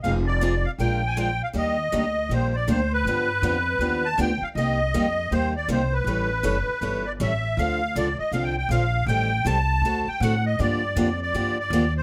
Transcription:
X:1
M:4/4
L:1/16
Q:"Swing" 1/4=159
K:Gm
V:1 name="Accordion"
f2 d4 f2 g2 _a2 g2 f2 | e8 c2 d2 c2 =B2- | =B8- B2 a2 g2 f2 | e8 c2 d2 c2 =B2- |
=B8- B2 d2 =e4 | f4 d2 e2 (3f2 g2 g2 f4 | g4 a6 g2 ^f2 e2 | d4 d2 d4 d4 c2 |]
V:2 name="Steel-string acoustic guitar"
[F,CE_A]2 z2 [F,CEA] z3 [F,_A,DFB]2 z2 [F,A,DFB] z3 | [E,G,B,DG]2 z2 [E,G,B,DG] z3 [E,G,B,DG]2 z2 [E,G,B,DG] z3 | [D,F,=B,DG]2 z2 [D,F,B,DG] z3 [D,F,B,DG]2 z2 [D,F,B,DG] z3 | [C,G,B,EG]2 z2 [C,G,B,EG] z3 [C,G,B,EG]2 z2 [C,G,B,EG] z3 |
[=E,G,^C=EA]2 z2 [E,G,CEA] z3 [E,G,CEA]2 z2 [E,G,CEA] z3 | [D,F,CDA]2 z2 [D,F,CDA] z3 [D,F,CDA]2 z2 [D,F,CDA] z3 | [E,G,CGA]2 z2 [E,G,CGA] z3 [D,A,C^FA]2 z2 [D,A,CFA] z3 | [D,F,B,DG]2 z2 [D,F,B,DG] z3 [D,F,B,DG]2 z2 [D,F,B,DG] z3 |]
V:3 name="Upright bass" clef=bass
F,,,8 B,,,8 | E,,4 D,,4 B,,,4 D,,4 | G,,4 F,,4 E,,4 D,,2 z2 | C,,4 F,,4 E,,4 C,,4 |
A,,,4 ^F,,,2 z2 G,,,4 A,,,4 | D,,4 ^C,,2 z2 =C,,4 B,,,4 | A,,,4 C,,4 D,,2 z2 A,,4 | G,,4 F,,4 G,,4 E,,4 |]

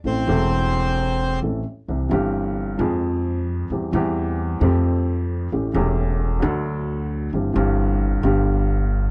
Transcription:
X:1
M:4/4
L:1/8
Q:1/4=132
K:Am
V:1 name="Bandoneon"
[Cc]6 z2 | [K:C] z8 | z8 | z8 |
z8 |]
V:2 name="Upright piano" clef=bass
[A,,,A,,E,A,CA] [E,,,E,,E,A,CA]4- [E,,,E,,E,A,CA] [A,,,A,,E,A,CA] z | [K:C] [C,,C,E,G,CG] [G,,,G,,E,G,CG]3 [F,,F,_A,C_A]4 | [E,,E,G,CG] [E,,E,G,CG]3 [F,,F,A,CG]4 | [A,,,A,,E,A,^CG] [E,,,E,,E,A,CG]3 [D,,D,^F,A,DA]4 |
[G,,,G,,E,G,CG] [G,,,G,,E,G,CG]3 [G,,,G,,D,G,B,G]4 |]
V:3 name="Upright bass" clef=bass
A,,, E,,,4- E,,, A,,, z | [K:C] C,, G,,,3 F,,4 | E,, E,,3 F,,4 | A,,, E,,,3 D,,4 |
G,,, G,,,3 G,,,4 |]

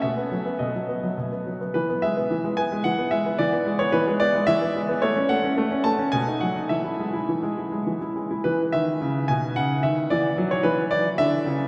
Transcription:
X:1
M:3/4
L:1/16
Q:1/4=109
K:E
V:1 name="Grand piano"
e4 d6 z2 | B2 e4 g2 f2 e2 | =d3 c B2 d2 e4 | c2 f4 a2 g2 f2 |
e8 z4 | B2 e4 g2 f2 e2 | =d3 c B2 d2 e4 |]
V:2 name="Grand piano" clef=bass
B,, B, F, B, B,, F, B, F, B,, B, F, B, | E, B, G, B, E, G, B, G, E, B, G, B, | E, B, G, B, E, G, B, G, E, B, G, B, | A, C A, C A, C A, C B,, D F, D |
E, E G, E E, G, E G, E, E G, E | E,2 D,2 C,2 B,,2 C,2 D,2 | E,2 F,2 E,4 =D,2 C,2 |]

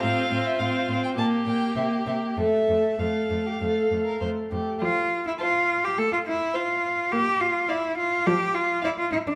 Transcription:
X:1
M:4/4
L:1/16
Q:1/4=104
K:F
V:1 name="Violin"
f3 e f3 g a2 g2 e2 e2 | e4 f8 z4 | z4 a4 z4 f4 | z4 f4 z4 f4 |]
V:2 name="Violin"
F8 G8 | A4 A3 G A3 B c2 G2 | z4 c4 z4 c4 | z4 d4 z4 d4 |]
V:3 name="Cello"
A,,2 A,,2 A,,2 A,,2 B,,2 B,,2 C,2 C,2 | F,,2 F,,2 F,,2 F,,2 F,,2 F,,2 F,,2 F,,2 | F3 E F3 G A F E2 F4 | G2 F2 E2 F2 G2 F2 E F E D |]
V:4 name="Viola"
C2 C2 C2 C2 B,2 B,2 B,2 B,2 | A,2 A,2 A,2 A,2 A,2 A,2 A,2 A,2 | F,4 z4 A,4 z4 | B,4 z4 F,4 z4 |]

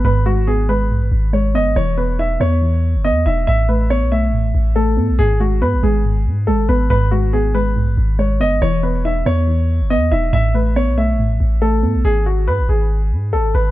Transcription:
X:1
M:4/4
L:1/16
Q:1/4=140
K:G#phr
V:1 name="Grand piano"
B2 F2 G2 B6 c2 d2 | c2 B2 e2 c6 d2 e2 | e2 B2 c2 e6 A4 | G2 F2 B2 G6 A2 B2 |
B2 F2 G2 B6 c2 d2 | c2 B2 e2 c6 d2 e2 | e2 B2 c2 e6 A4 | G2 F2 B2 G6 A2 B2 |]
V:2 name="Synth pluck"
[G,,G,B,]2 G,2 B,2 G,2 G,,4 G,2 B,2 | E,2 B,2 D2 B,2 E,4 B,2 D2 | A,,2 A,2 B,2 A,2 A,,4 A,2 B,2 | G,,2 G,2 B,2 G,2 G,,4 G,2 B,2 |
G,,2 G,2 B,2 G,2 G,,4 G,2 B,2 | E,2 B,2 D2 B,2 E,4 B,2 D2 | A,,2 A,2 B,2 A,2 A,,4 A,2 B,2 | z16 |]
V:3 name="808-style bass" clef=bass
G,,,8 B,,, G,,, G,,,4 F,,, G,,, | E,,,6 E,,4- E,, F,,,3/2 E,,3/2 E,,,2 | A,,,4- A,,, B,,,2- B,,,/2 A,,,2- A,,,/2 A,,,4 A,, A,,, | G,,,4 G,, G,,, G,,,4 G,,2 G,,,2 G,,,2 |
G,,,8 B,,, G,,, G,,,4 F,,, G,,, | E,,,6 E,,4- E,, F,,,3/2 E,,3/2 E,,,2 | A,,,4- A,,, B,,,2- B,,,/2 A,,,2- A,,,/2 A,,,4 A,, A,,, | G,,,4 G,, G,,, G,,,4 G,,2 G,,,2 G,,,2 |]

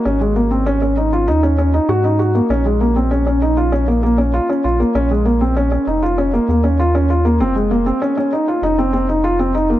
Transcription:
X:1
M:4/4
L:1/16
Q:1/4=98
K:Bbm
V:1 name="Felt piano"
D A, B, C D D E F E D D E G E G B, | D A, B, C D D E F D B, B, D F D F B, | D A, B, C D D E F D B, B, D F D F B, | C A, B, C D D E F E C C E F C E B, |]
V:2 name="Sub bass" clef=bass
A,,,8 E,,4 A,,4 | B,,,12 z2 B,,,2 | B,,,6 F,,,4 E,,6 | F,,,4 z4 F,,,8 |]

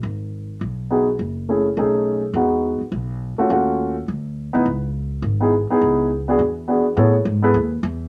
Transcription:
X:1
M:4/4
L:1/8
Q:"Swing" 1/4=208
K:C#m
V:1 name="Upright piano"
z6 [B,DFG] z | z2 [A,CEG] z [A,CDG]3 z | [G,B,DF]3 z4 [A,C^EF] | [A,C^EF]3 z4 [B,D=EB] |
z4 z [B,DEG] z [B,DEG]- | [B,DEG]2 z [B,=DFG] z2 [B,DFG] z | [B,EGAc] z2 [B,EGAB] z4 |]
V:2 name="Upright bass" clef=bass
G,,,4 B,,,4 | F,,,4 B,,,4 | E,,3 z B,,,3 z | D,,4 =D,,3 D,, |
C,,4 G,,,3 z | C,,4 E,,4 | A,,2 G,,2 D,,2 E,,2 |]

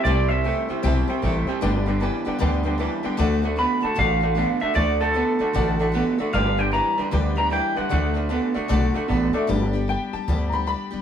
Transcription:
X:1
M:4/4
L:1/8
Q:"Swing" 1/4=153
K:G
V:1 name="Clean electric guitar"
d e6 z | z8 | z2 b a =f3 e | d A6 z |
=f g _b2 z b g ^f- | f z6 z | z8 |]
V:2 name="Upright piano"
[ceg] [ceg] [ceg] [ceg] [ceg] [ceg] [ceg] [ceg] | [Bdg] [Bdg] [Bdg] [Bdg] [Bdg] [Bdg] [Bdg] [Bdg] | [Adf] [Adf] [Adf] [Adf] [Adf] [Adf] [Adf] [Adf] | [Ada] [Adf] [Adf] [Adf] [Adf] [Adf] [Adf] [Adf] |
[Bdg] [Bdg] [Bdg] [Bdg] [Bdg] [Bdg] [Bdg] [Bde] | [Adf] [Adf] [Adf] [Adf] [Adf] [Adf] [Adf] [Ade] | [G,B,D] z g a2 [_b=b] b2 |]
V:3 name="Steel-string acoustic guitar"
[C,G,CEG] [CEG] [G,CEG] [CEG] [C,G,CEG] [CEG] [G,CEG] [CEG] | [G,,D,G,B,DG] [G,B,DG] [G,B,DG] [G,B,DG] [G,,D,G,B,DG] [G,B,DG] [G,B,DG] [G,B,DG] | [D,A,DFA] [DFA] [A,DFA] [DFA] [D,A,DFA] [DFA] [A,DFA] [DFA] | [D,A,DFA] [DFA] [A,DFA] [DFA] [D,A,DFA] [DFA] [A,DFA] [DFA] |
[G,,D,G,DGB] [G,DGB] [G,DGB] [G,DGB] [G,,D,G,DGB] [G,DGB] [G,DGB] [G,DGB] | [D,A,DFA] [DFA] [A,DFA] [DFA] [D,A,DFA] [DFA] [A,DFA] [DFA] | [G,,D,G,B,DG] [G,B,DG] [G,B,DG] [G,B,DG] [G,,D,G,B,DG] [G,B,DG] [G,B,DG] [G,B,DG] |]
V:4 name="Clean electric guitar" clef=bass
[C,G,] [C,G,] [C,A,] [C,G,] [C,G,] [C,G,] [C,A,] [C,G,] | [G,,D,] [G,,D,] [G,,E,] [G,,D,] [G,,D,] [G,,D,] [G,,E,] [G,,D,] | [D,A,] [D,A,] [D,B,] [D,A,] [D,A,] [D,A,] [D,B,] [D,A,] | [D,A,] [D,A,] [D,B,] [D,A,] [D,A,] [D,A,] [D,B,] [D,A,] |
[G,,D,] [G,,D,] [G,,E,] [G,,D,] [G,,D,] [G,,D,] [G,,E,] [G,,D,] | [D,A,] [D,A,] [D,B,] [D,A,] [D,A,] [D,A,] [D,B,] [D,A,] | z8 |]
V:5 name="Upright bass" clef=bass
C,,3 z B,,, z A,,, z | G,,,3 z D,,3 z | D,,3 z A,,,3 z | D,,3 z A,,,3 z |
G,,,3 z D,,3 z | D,,3 z B,,, z A,,, z | G,,,3 z D,,3 z |]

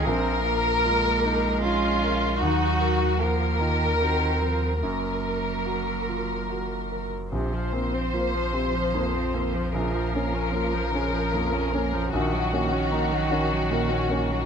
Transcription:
X:1
M:3/4
L:1/16
Q:1/4=75
K:Bbm
V:1 name="Violin section"
B8 F4 | G4 B8 | B8- B3 z | c12 |
B12 | G12 |]
V:2 name="Felt piano"
B,,,2 B2 F2 E2 F2 B2 | E,,2 B2 g2 F2 G2 B2 | G,,2 B2 G2 F2 G2 B2 | B,,,2 C2 F2 C2 F,,2 C2 |
B,,,2 D2 F2 D2 F,,2 D2 | B,,,2 D2 E2 D2 B,,2 D2 |]
V:3 name="Viola"
C2 B,6 D4 | E4 B,4 C4 | B,8- B,3 z | C, F, B, C B, F, C, F, B, C B, F, |
D, F, B, D B, F, D, F, B, D B, F, | E, G, B, D B, G, E, G, B, D B, G, |]
V:4 name="Cello" clef=bass
F,4 A,8 | G,4 F,2 E,2 E,2 F,2 | G,8- G,3 z | F,12- |
F,12 | E,12 |]
V:5 name="Sub bass" clef=bass
B,,,12 | E,,12 | G,,,12 | B,,,12- |
B,,,12 | B,,,12 |]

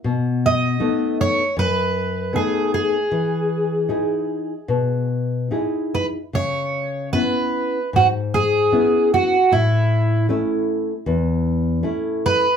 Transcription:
X:1
M:4/4
L:1/8
Q:1/4=77
K:E
V:1 name="Twelve-string acoustic guitar"
z d2 c B2 G G- | G4- G z2 B | [K:C#m] c2 B2 F G2 F | E2 z4 z B |]
V:2 name="Nylon-string guitar"
B,,2 [A,B,D]2 F,,2 [A,B,D]2 | E,2 [DEG]2 B,,2 [DEG]2 | [K:C#m] C,2 [B,CE]2 G,,2 [B,CE]2 | A,,2 [A,CE]2 E,,2 [A,CE]2 |]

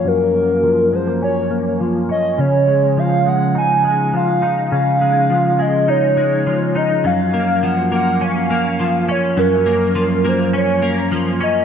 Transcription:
X:1
M:4/4
L:1/16
Q:1/4=103
K:Gb
V:1 name="Soft synth lead"
B6 =c2 d4 z2 e2 | d4 f2 g2 a2 a2 f4 | f6 e2 d6 e2 | f4 g2 g2 f6 d2 |
B6 =c2 d4 z2 e2 |]
V:2 name="Clean electric guitar" clef=bass
[G,,F,B,D]2 B,2 F,2 A, B, D2 B,2 F,2 D2 | D,2 A,2 F,2 A,2 E2 A,2 F,2 E2 | D,2 A,2 F,2 A,2 E2 A,2 F,2 E2 | G,,2 B,2 F,2 B,2 D2 B,2 F,2 D2 |
G,,2 B,2 F,2 B,2 D2 B,2 F,2 D2 |]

